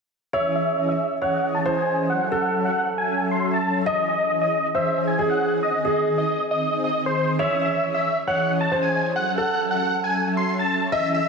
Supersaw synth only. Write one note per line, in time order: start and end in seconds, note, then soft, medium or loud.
0.33 0.49 E5 loud
0.55 0.79 E5 medium
0.89 1.12 E5 medium
1.22 1.45 F#5 medium
1.55 1.70 A5 medium
1.77 2.00 G#5 medium
2.10 2.25 F#5 medium
2.32 2.55 F#5 medium
2.65 2.88 F#5 medium
2.98 3.21 G#5 medium
3.31 3.47 C6 medium
3.53 3.77 A5 medium
3.86 4.02 D#5 medium
4.09 4.32 D#5 medium
4.42 4.65 D#5 medium
4.75 4.98 E5 medium
5.08 5.23 G#5 medium
5.30 5.53 F#5 medium
5.63 5.78 D#5 loud
5.85 6.08 D#5 medium
6.18 6.41 D#5 medium
6.51 6.74 D#5 medium
6.84 7.00 D#5 medium
7.06 7.29 C5 medium
7.39 7.55 E5 medium
7.61 7.85 E5 medium
7.94 8.18 E5 medium
8.28 8.51 F#5 medium
8.61 8.76 A5 medium
8.83 9.06 G#5 medium
9.16 9.31 F#5 medium
9.38 9.61 F#5 medium
9.71 9.94 F#5 medium
10.04 10.27 G#5 medium
10.37 10.53 C6 medium
10.59 10.82 A5 medium
10.92 11.08 E5 medium
11.14 11.29 E5 medium